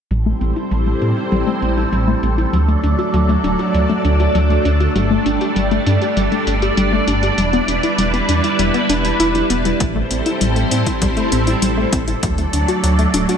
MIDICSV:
0, 0, Header, 1, 5, 480
1, 0, Start_track
1, 0, Key_signature, 0, "minor"
1, 0, Tempo, 606061
1, 86, Time_signature, 4, 2, 24, 8
1, 10594, End_track
2, 0, Start_track
2, 0, Title_t, "String machine"
2, 0, Program_c, 0, 50
2, 84, Note_on_c, 0, 64, 74
2, 84, Note_on_c, 0, 69, 75
2, 85, Note_on_c, 0, 55, 81
2, 85, Note_on_c, 0, 60, 76
2, 85, Note_on_c, 0, 72, 91
2, 1986, Note_off_c, 0, 55, 0
2, 1986, Note_off_c, 0, 60, 0
2, 1986, Note_off_c, 0, 64, 0
2, 1986, Note_off_c, 0, 72, 0
2, 2007, Note_on_c, 0, 57, 75
2, 2007, Note_on_c, 0, 62, 74
2, 2008, Note_on_c, 0, 54, 79
2, 2008, Note_on_c, 0, 74, 91
2, 3908, Note_off_c, 0, 54, 0
2, 3908, Note_off_c, 0, 74, 0
2, 3926, Note_on_c, 0, 55, 83
2, 3926, Note_on_c, 0, 74, 92
2, 5814, Note_off_c, 0, 69, 0
2, 5815, Note_off_c, 0, 57, 0
2, 5827, Note_off_c, 0, 55, 0
2, 5844, Note_on_c, 0, 71, 75
2, 5845, Note_on_c, 0, 55, 82
2, 5845, Note_on_c, 0, 64, 75
2, 7734, Note_off_c, 0, 74, 0
2, 7735, Note_off_c, 0, 62, 0
2, 7746, Note_off_c, 0, 55, 0
2, 7746, Note_off_c, 0, 64, 0
2, 7746, Note_off_c, 0, 71, 0
2, 7766, Note_on_c, 0, 55, 85
2, 7766, Note_on_c, 0, 60, 75
2, 7766, Note_on_c, 0, 64, 76
2, 7766, Note_on_c, 0, 69, 75
2, 7766, Note_on_c, 0, 72, 92
2, 9667, Note_off_c, 0, 55, 0
2, 9667, Note_off_c, 0, 60, 0
2, 9667, Note_off_c, 0, 64, 0
2, 9667, Note_off_c, 0, 72, 0
2, 9685, Note_on_c, 0, 62, 76
2, 9686, Note_on_c, 0, 54, 85
2, 9686, Note_on_c, 0, 57, 76
2, 9686, Note_on_c, 0, 74, 90
2, 10594, Note_off_c, 0, 54, 0
2, 10594, Note_off_c, 0, 57, 0
2, 10594, Note_off_c, 0, 62, 0
2, 10594, Note_off_c, 0, 69, 0
2, 10594, Note_off_c, 0, 74, 0
2, 10594, End_track
3, 0, Start_track
3, 0, Title_t, "Synth arpeggio sound"
3, 0, Program_c, 1, 84
3, 86, Note_on_c, 1, 55, 79
3, 137, Note_off_c, 1, 55, 0
3, 206, Note_on_c, 1, 57, 101
3, 257, Note_off_c, 1, 57, 0
3, 325, Note_on_c, 1, 60, 72
3, 440, Note_off_c, 1, 60, 0
3, 446, Note_on_c, 1, 64, 74
3, 530, Note_off_c, 1, 64, 0
3, 566, Note_on_c, 1, 55, 78
3, 650, Note_off_c, 1, 55, 0
3, 687, Note_on_c, 1, 57, 69
3, 737, Note_off_c, 1, 57, 0
3, 806, Note_on_c, 1, 60, 71
3, 920, Note_off_c, 1, 60, 0
3, 926, Note_on_c, 1, 64, 73
3, 977, Note_off_c, 1, 64, 0
3, 1046, Note_on_c, 1, 55, 98
3, 1130, Note_off_c, 1, 55, 0
3, 1166, Note_on_c, 1, 57, 95
3, 1216, Note_off_c, 1, 57, 0
3, 1286, Note_on_c, 1, 60, 72
3, 1371, Note_off_c, 1, 60, 0
3, 1405, Note_on_c, 1, 64, 76
3, 1456, Note_off_c, 1, 64, 0
3, 1525, Note_on_c, 1, 55, 80
3, 1576, Note_off_c, 1, 55, 0
3, 1645, Note_on_c, 1, 57, 99
3, 1696, Note_off_c, 1, 57, 0
3, 1765, Note_on_c, 1, 60, 75
3, 1879, Note_off_c, 1, 60, 0
3, 1885, Note_on_c, 1, 64, 72
3, 1970, Note_off_c, 1, 64, 0
3, 2005, Note_on_c, 1, 54, 80
3, 2090, Note_off_c, 1, 54, 0
3, 2126, Note_on_c, 1, 57, 75
3, 2176, Note_off_c, 1, 57, 0
3, 2245, Note_on_c, 1, 62, 72
3, 2360, Note_off_c, 1, 62, 0
3, 2366, Note_on_c, 1, 66, 76
3, 2417, Note_off_c, 1, 66, 0
3, 2485, Note_on_c, 1, 54, 96
3, 2570, Note_off_c, 1, 54, 0
3, 2607, Note_on_c, 1, 57, 95
3, 2657, Note_off_c, 1, 57, 0
3, 2725, Note_on_c, 1, 62, 70
3, 2810, Note_off_c, 1, 62, 0
3, 2847, Note_on_c, 1, 66, 70
3, 2897, Note_off_c, 1, 66, 0
3, 2966, Note_on_c, 1, 54, 78
3, 3017, Note_off_c, 1, 54, 0
3, 3086, Note_on_c, 1, 57, 100
3, 3137, Note_off_c, 1, 57, 0
3, 3207, Note_on_c, 1, 62, 71
3, 3320, Note_off_c, 1, 62, 0
3, 3327, Note_on_c, 1, 66, 75
3, 3411, Note_off_c, 1, 66, 0
3, 3446, Note_on_c, 1, 54, 81
3, 3530, Note_off_c, 1, 54, 0
3, 3566, Note_on_c, 1, 57, 72
3, 3617, Note_off_c, 1, 57, 0
3, 3685, Note_on_c, 1, 62, 76
3, 3800, Note_off_c, 1, 62, 0
3, 3806, Note_on_c, 1, 66, 72
3, 3856, Note_off_c, 1, 66, 0
3, 3927, Note_on_c, 1, 55, 99
3, 4011, Note_off_c, 1, 55, 0
3, 4046, Note_on_c, 1, 57, 99
3, 4096, Note_off_c, 1, 57, 0
3, 4167, Note_on_c, 1, 62, 70
3, 4251, Note_off_c, 1, 62, 0
3, 4287, Note_on_c, 1, 67, 76
3, 4337, Note_off_c, 1, 67, 0
3, 4407, Note_on_c, 1, 55, 80
3, 4457, Note_off_c, 1, 55, 0
3, 4527, Note_on_c, 1, 57, 92
3, 4577, Note_off_c, 1, 57, 0
3, 4648, Note_on_c, 1, 62, 75
3, 4761, Note_off_c, 1, 62, 0
3, 4768, Note_on_c, 1, 67, 71
3, 4851, Note_off_c, 1, 67, 0
3, 4887, Note_on_c, 1, 55, 79
3, 4971, Note_off_c, 1, 55, 0
3, 5007, Note_on_c, 1, 57, 75
3, 5057, Note_off_c, 1, 57, 0
3, 5127, Note_on_c, 1, 62, 73
3, 5241, Note_off_c, 1, 62, 0
3, 5247, Note_on_c, 1, 67, 76
3, 5297, Note_off_c, 1, 67, 0
3, 5366, Note_on_c, 1, 55, 97
3, 5450, Note_off_c, 1, 55, 0
3, 5485, Note_on_c, 1, 57, 98
3, 5536, Note_off_c, 1, 57, 0
3, 5605, Note_on_c, 1, 62, 75
3, 5690, Note_off_c, 1, 62, 0
3, 5726, Note_on_c, 1, 67, 70
3, 5777, Note_off_c, 1, 67, 0
3, 5845, Note_on_c, 1, 55, 82
3, 5896, Note_off_c, 1, 55, 0
3, 5966, Note_on_c, 1, 59, 99
3, 6017, Note_off_c, 1, 59, 0
3, 6085, Note_on_c, 1, 62, 73
3, 6200, Note_off_c, 1, 62, 0
3, 6205, Note_on_c, 1, 64, 75
3, 6290, Note_off_c, 1, 64, 0
3, 6325, Note_on_c, 1, 55, 79
3, 6410, Note_off_c, 1, 55, 0
3, 6445, Note_on_c, 1, 59, 74
3, 6496, Note_off_c, 1, 59, 0
3, 6565, Note_on_c, 1, 62, 75
3, 6679, Note_off_c, 1, 62, 0
3, 6685, Note_on_c, 1, 64, 69
3, 6736, Note_off_c, 1, 64, 0
3, 6805, Note_on_c, 1, 55, 95
3, 6890, Note_off_c, 1, 55, 0
3, 6925, Note_on_c, 1, 59, 98
3, 6976, Note_off_c, 1, 59, 0
3, 7046, Note_on_c, 1, 62, 94
3, 7130, Note_off_c, 1, 62, 0
3, 7167, Note_on_c, 1, 71, 75
3, 7280, Note_off_c, 1, 71, 0
3, 7287, Note_on_c, 1, 64, 99
3, 7371, Note_off_c, 1, 64, 0
3, 7407, Note_on_c, 1, 55, 74
3, 7491, Note_off_c, 1, 55, 0
3, 7527, Note_on_c, 1, 59, 77
3, 7611, Note_off_c, 1, 59, 0
3, 7645, Note_on_c, 1, 55, 72
3, 7730, Note_off_c, 1, 55, 0
3, 7766, Note_on_c, 1, 55, 81
3, 7817, Note_off_c, 1, 55, 0
3, 7885, Note_on_c, 1, 57, 98
3, 7936, Note_off_c, 1, 57, 0
3, 8007, Note_on_c, 1, 60, 70
3, 8120, Note_off_c, 1, 60, 0
3, 8127, Note_on_c, 1, 64, 73
3, 8211, Note_off_c, 1, 64, 0
3, 8246, Note_on_c, 1, 55, 81
3, 8331, Note_off_c, 1, 55, 0
3, 8366, Note_on_c, 1, 57, 74
3, 8417, Note_off_c, 1, 57, 0
3, 8488, Note_on_c, 1, 60, 75
3, 8601, Note_off_c, 1, 60, 0
3, 8608, Note_on_c, 1, 64, 68
3, 8657, Note_off_c, 1, 64, 0
3, 8727, Note_on_c, 1, 55, 99
3, 8811, Note_off_c, 1, 55, 0
3, 8847, Note_on_c, 1, 57, 99
3, 8897, Note_off_c, 1, 57, 0
3, 8967, Note_on_c, 1, 60, 74
3, 9051, Note_off_c, 1, 60, 0
3, 9088, Note_on_c, 1, 64, 77
3, 9137, Note_off_c, 1, 64, 0
3, 9207, Note_on_c, 1, 55, 81
3, 9257, Note_off_c, 1, 55, 0
3, 9327, Note_on_c, 1, 57, 98
3, 9377, Note_off_c, 1, 57, 0
3, 9448, Note_on_c, 1, 60, 76
3, 9561, Note_off_c, 1, 60, 0
3, 9567, Note_on_c, 1, 64, 73
3, 9651, Note_off_c, 1, 64, 0
3, 9687, Note_on_c, 1, 54, 80
3, 9771, Note_off_c, 1, 54, 0
3, 9807, Note_on_c, 1, 57, 76
3, 9857, Note_off_c, 1, 57, 0
3, 9926, Note_on_c, 1, 62, 72
3, 10040, Note_off_c, 1, 62, 0
3, 10047, Note_on_c, 1, 66, 75
3, 10097, Note_off_c, 1, 66, 0
3, 10167, Note_on_c, 1, 54, 97
3, 10251, Note_off_c, 1, 54, 0
3, 10286, Note_on_c, 1, 57, 94
3, 10337, Note_off_c, 1, 57, 0
3, 10408, Note_on_c, 1, 62, 75
3, 10491, Note_off_c, 1, 62, 0
3, 10527, Note_on_c, 1, 66, 71
3, 10577, Note_off_c, 1, 66, 0
3, 10594, End_track
4, 0, Start_track
4, 0, Title_t, "Detuned saw bass"
4, 0, Program_c, 2, 39
4, 85, Note_on_c, 2, 33, 94
4, 268, Note_off_c, 2, 33, 0
4, 325, Note_on_c, 2, 33, 79
4, 417, Note_off_c, 2, 33, 0
4, 565, Note_on_c, 2, 33, 93
4, 748, Note_off_c, 2, 33, 0
4, 805, Note_on_c, 2, 45, 79
4, 897, Note_off_c, 2, 45, 0
4, 1046, Note_on_c, 2, 33, 81
4, 1137, Note_off_c, 2, 33, 0
4, 1285, Note_on_c, 2, 33, 95
4, 1468, Note_off_c, 2, 33, 0
4, 1525, Note_on_c, 2, 33, 85
4, 1708, Note_off_c, 2, 33, 0
4, 1766, Note_on_c, 2, 33, 87
4, 1948, Note_off_c, 2, 33, 0
4, 2005, Note_on_c, 2, 38, 93
4, 2188, Note_off_c, 2, 38, 0
4, 2245, Note_on_c, 2, 38, 76
4, 2337, Note_off_c, 2, 38, 0
4, 2485, Note_on_c, 2, 38, 96
4, 2668, Note_off_c, 2, 38, 0
4, 2725, Note_on_c, 2, 26, 81
4, 2817, Note_off_c, 2, 26, 0
4, 2964, Note_on_c, 2, 38, 83
4, 3056, Note_off_c, 2, 38, 0
4, 3205, Note_on_c, 2, 38, 92
4, 3388, Note_off_c, 2, 38, 0
4, 3444, Note_on_c, 2, 38, 86
4, 3628, Note_off_c, 2, 38, 0
4, 3685, Note_on_c, 2, 38, 88
4, 3868, Note_off_c, 2, 38, 0
4, 3926, Note_on_c, 2, 31, 91
4, 4108, Note_off_c, 2, 31, 0
4, 4166, Note_on_c, 2, 31, 77
4, 4257, Note_off_c, 2, 31, 0
4, 4405, Note_on_c, 2, 31, 94
4, 4588, Note_off_c, 2, 31, 0
4, 4645, Note_on_c, 2, 43, 81
4, 4737, Note_off_c, 2, 43, 0
4, 4884, Note_on_c, 2, 31, 84
4, 4977, Note_off_c, 2, 31, 0
4, 5125, Note_on_c, 2, 31, 93
4, 5308, Note_off_c, 2, 31, 0
4, 5365, Note_on_c, 2, 31, 88
4, 5548, Note_off_c, 2, 31, 0
4, 5604, Note_on_c, 2, 31, 89
4, 5787, Note_off_c, 2, 31, 0
4, 5843, Note_on_c, 2, 28, 95
4, 6027, Note_off_c, 2, 28, 0
4, 6084, Note_on_c, 2, 28, 80
4, 6176, Note_off_c, 2, 28, 0
4, 6323, Note_on_c, 2, 28, 95
4, 6507, Note_off_c, 2, 28, 0
4, 6565, Note_on_c, 2, 40, 80
4, 6657, Note_off_c, 2, 40, 0
4, 6804, Note_on_c, 2, 28, 88
4, 6896, Note_off_c, 2, 28, 0
4, 7045, Note_on_c, 2, 28, 91
4, 7228, Note_off_c, 2, 28, 0
4, 7285, Note_on_c, 2, 28, 73
4, 7468, Note_off_c, 2, 28, 0
4, 7526, Note_on_c, 2, 28, 82
4, 7708, Note_off_c, 2, 28, 0
4, 7765, Note_on_c, 2, 33, 97
4, 7948, Note_off_c, 2, 33, 0
4, 8006, Note_on_c, 2, 33, 78
4, 8097, Note_off_c, 2, 33, 0
4, 8246, Note_on_c, 2, 33, 97
4, 8429, Note_off_c, 2, 33, 0
4, 8487, Note_on_c, 2, 45, 80
4, 8578, Note_off_c, 2, 45, 0
4, 8725, Note_on_c, 2, 33, 84
4, 8817, Note_off_c, 2, 33, 0
4, 8965, Note_on_c, 2, 33, 94
4, 9148, Note_off_c, 2, 33, 0
4, 9206, Note_on_c, 2, 33, 90
4, 9389, Note_off_c, 2, 33, 0
4, 9447, Note_on_c, 2, 33, 89
4, 9629, Note_off_c, 2, 33, 0
4, 9686, Note_on_c, 2, 38, 94
4, 9869, Note_off_c, 2, 38, 0
4, 9925, Note_on_c, 2, 38, 79
4, 10017, Note_off_c, 2, 38, 0
4, 10165, Note_on_c, 2, 38, 92
4, 10348, Note_off_c, 2, 38, 0
4, 10406, Note_on_c, 2, 26, 84
4, 10497, Note_off_c, 2, 26, 0
4, 10594, End_track
5, 0, Start_track
5, 0, Title_t, "Drums"
5, 85, Note_on_c, 9, 42, 74
5, 165, Note_off_c, 9, 42, 0
5, 325, Note_on_c, 9, 42, 73
5, 405, Note_off_c, 9, 42, 0
5, 446, Note_on_c, 9, 42, 51
5, 525, Note_off_c, 9, 42, 0
5, 566, Note_on_c, 9, 42, 73
5, 645, Note_off_c, 9, 42, 0
5, 686, Note_on_c, 9, 42, 35
5, 765, Note_off_c, 9, 42, 0
5, 805, Note_on_c, 9, 42, 74
5, 885, Note_off_c, 9, 42, 0
5, 926, Note_on_c, 9, 42, 52
5, 1005, Note_off_c, 9, 42, 0
5, 1046, Note_on_c, 9, 42, 72
5, 1125, Note_off_c, 9, 42, 0
5, 1166, Note_on_c, 9, 42, 36
5, 1245, Note_off_c, 9, 42, 0
5, 1286, Note_on_c, 9, 42, 74
5, 1365, Note_off_c, 9, 42, 0
5, 1406, Note_on_c, 9, 42, 50
5, 1485, Note_off_c, 9, 42, 0
5, 1526, Note_on_c, 9, 42, 75
5, 1605, Note_off_c, 9, 42, 0
5, 1766, Note_on_c, 9, 42, 74
5, 1846, Note_off_c, 9, 42, 0
5, 1887, Note_on_c, 9, 42, 50
5, 1966, Note_off_c, 9, 42, 0
5, 2007, Note_on_c, 9, 42, 77
5, 2086, Note_off_c, 9, 42, 0
5, 2126, Note_on_c, 9, 42, 36
5, 2206, Note_off_c, 9, 42, 0
5, 2246, Note_on_c, 9, 42, 71
5, 2325, Note_off_c, 9, 42, 0
5, 2366, Note_on_c, 9, 42, 51
5, 2445, Note_off_c, 9, 42, 0
5, 2485, Note_on_c, 9, 42, 75
5, 2564, Note_off_c, 9, 42, 0
5, 2606, Note_on_c, 9, 42, 36
5, 2685, Note_off_c, 9, 42, 0
5, 2726, Note_on_c, 9, 42, 76
5, 2805, Note_off_c, 9, 42, 0
5, 2845, Note_on_c, 9, 42, 49
5, 2924, Note_off_c, 9, 42, 0
5, 2966, Note_on_c, 9, 42, 77
5, 3045, Note_off_c, 9, 42, 0
5, 3085, Note_on_c, 9, 42, 36
5, 3164, Note_off_c, 9, 42, 0
5, 3205, Note_on_c, 9, 42, 74
5, 3284, Note_off_c, 9, 42, 0
5, 3325, Note_on_c, 9, 42, 51
5, 3405, Note_off_c, 9, 42, 0
5, 3445, Note_on_c, 9, 42, 77
5, 3524, Note_off_c, 9, 42, 0
5, 3566, Note_on_c, 9, 42, 37
5, 3645, Note_off_c, 9, 42, 0
5, 3685, Note_on_c, 9, 42, 76
5, 3764, Note_off_c, 9, 42, 0
5, 3805, Note_on_c, 9, 42, 49
5, 3884, Note_off_c, 9, 42, 0
5, 3925, Note_on_c, 9, 42, 76
5, 4004, Note_off_c, 9, 42, 0
5, 4165, Note_on_c, 9, 42, 72
5, 4244, Note_off_c, 9, 42, 0
5, 4285, Note_on_c, 9, 42, 51
5, 4364, Note_off_c, 9, 42, 0
5, 4405, Note_on_c, 9, 42, 74
5, 4484, Note_off_c, 9, 42, 0
5, 4525, Note_on_c, 9, 42, 36
5, 4604, Note_off_c, 9, 42, 0
5, 4645, Note_on_c, 9, 42, 76
5, 4724, Note_off_c, 9, 42, 0
5, 4765, Note_on_c, 9, 42, 50
5, 4844, Note_off_c, 9, 42, 0
5, 4885, Note_on_c, 9, 42, 72
5, 4964, Note_off_c, 9, 42, 0
5, 5005, Note_on_c, 9, 42, 35
5, 5084, Note_off_c, 9, 42, 0
5, 5125, Note_on_c, 9, 42, 75
5, 5204, Note_off_c, 9, 42, 0
5, 5245, Note_on_c, 9, 42, 52
5, 5324, Note_off_c, 9, 42, 0
5, 5365, Note_on_c, 9, 42, 75
5, 5444, Note_off_c, 9, 42, 0
5, 5604, Note_on_c, 9, 42, 74
5, 5683, Note_off_c, 9, 42, 0
5, 5725, Note_on_c, 9, 42, 49
5, 5804, Note_off_c, 9, 42, 0
5, 5844, Note_on_c, 9, 42, 70
5, 5924, Note_off_c, 9, 42, 0
5, 5965, Note_on_c, 9, 42, 32
5, 6044, Note_off_c, 9, 42, 0
5, 6084, Note_on_c, 9, 42, 70
5, 6163, Note_off_c, 9, 42, 0
5, 6204, Note_on_c, 9, 42, 50
5, 6283, Note_off_c, 9, 42, 0
5, 6324, Note_on_c, 9, 42, 75
5, 6403, Note_off_c, 9, 42, 0
5, 6445, Note_on_c, 9, 42, 33
5, 6524, Note_off_c, 9, 42, 0
5, 6564, Note_on_c, 9, 42, 72
5, 6643, Note_off_c, 9, 42, 0
5, 6684, Note_on_c, 9, 42, 48
5, 6763, Note_off_c, 9, 42, 0
5, 6804, Note_on_c, 9, 42, 69
5, 6883, Note_off_c, 9, 42, 0
5, 6924, Note_on_c, 9, 42, 33
5, 7004, Note_off_c, 9, 42, 0
5, 7045, Note_on_c, 9, 42, 71
5, 7124, Note_off_c, 9, 42, 0
5, 7165, Note_on_c, 9, 42, 49
5, 7244, Note_off_c, 9, 42, 0
5, 7285, Note_on_c, 9, 42, 70
5, 7364, Note_off_c, 9, 42, 0
5, 7404, Note_on_c, 9, 42, 34
5, 7484, Note_off_c, 9, 42, 0
5, 7525, Note_on_c, 9, 42, 72
5, 7604, Note_off_c, 9, 42, 0
5, 7645, Note_on_c, 9, 42, 48
5, 7724, Note_off_c, 9, 42, 0
5, 7764, Note_on_c, 9, 42, 68
5, 7766, Note_on_c, 9, 36, 106
5, 7843, Note_off_c, 9, 42, 0
5, 7845, Note_off_c, 9, 36, 0
5, 8004, Note_on_c, 9, 42, 67
5, 8083, Note_off_c, 9, 42, 0
5, 8125, Note_on_c, 9, 42, 48
5, 8204, Note_off_c, 9, 42, 0
5, 8245, Note_on_c, 9, 42, 70
5, 8324, Note_off_c, 9, 42, 0
5, 8365, Note_on_c, 9, 42, 34
5, 8444, Note_off_c, 9, 42, 0
5, 8485, Note_on_c, 9, 42, 69
5, 8565, Note_off_c, 9, 42, 0
5, 8605, Note_on_c, 9, 42, 47
5, 8606, Note_on_c, 9, 36, 57
5, 8684, Note_off_c, 9, 42, 0
5, 8685, Note_off_c, 9, 36, 0
5, 8725, Note_on_c, 9, 42, 68
5, 8726, Note_on_c, 9, 36, 108
5, 8804, Note_off_c, 9, 42, 0
5, 8806, Note_off_c, 9, 36, 0
5, 8845, Note_on_c, 9, 42, 33
5, 8924, Note_off_c, 9, 42, 0
5, 8965, Note_on_c, 9, 42, 70
5, 9044, Note_off_c, 9, 42, 0
5, 9085, Note_on_c, 9, 42, 46
5, 9164, Note_off_c, 9, 42, 0
5, 9205, Note_on_c, 9, 42, 70
5, 9284, Note_off_c, 9, 42, 0
5, 9445, Note_on_c, 9, 42, 71
5, 9447, Note_on_c, 9, 36, 98
5, 9524, Note_off_c, 9, 42, 0
5, 9526, Note_off_c, 9, 36, 0
5, 9564, Note_on_c, 9, 42, 46
5, 9644, Note_off_c, 9, 42, 0
5, 9685, Note_on_c, 9, 42, 70
5, 9687, Note_on_c, 9, 36, 103
5, 9764, Note_off_c, 9, 42, 0
5, 9766, Note_off_c, 9, 36, 0
5, 9806, Note_on_c, 9, 42, 32
5, 9885, Note_off_c, 9, 42, 0
5, 9926, Note_on_c, 9, 42, 68
5, 10005, Note_off_c, 9, 42, 0
5, 10046, Note_on_c, 9, 42, 47
5, 10125, Note_off_c, 9, 42, 0
5, 10166, Note_on_c, 9, 42, 69
5, 10245, Note_off_c, 9, 42, 0
5, 10287, Note_on_c, 9, 42, 33
5, 10366, Note_off_c, 9, 42, 0
5, 10406, Note_on_c, 9, 42, 71
5, 10485, Note_off_c, 9, 42, 0
5, 10526, Note_on_c, 9, 42, 46
5, 10594, Note_off_c, 9, 42, 0
5, 10594, End_track
0, 0, End_of_file